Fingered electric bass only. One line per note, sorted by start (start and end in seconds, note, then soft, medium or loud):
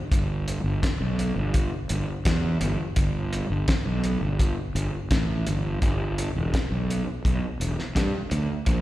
0.12 0.56 G1 medium
0.64 0.80 G1 medium
1.01 1.31 B1 medium
1.36 1.66 G1 medium
1.90 2.05 G1 loud
2.26 2.56 E2 loud
2.60 2.76 G1 loud
2.97 3.42 G1 medium
3.50 3.65 G1 medium
3.86 4.16 B1 medium
4.21 4.51 G1 medium
4.75 4.90 G1 loud
5.11 5.43 A1 medium
5.47 5.79 G1 medium
5.83 6.27 G1 medium
6.36 6.51 E1 medium
6.71 7.01 B1 medium
7.25 7.40 B1 medium
7.60 7.75 E1 medium
7.95 8.11 G2 medium
8.31 8.47 D2 medium
8.67 8.81 A#1 loud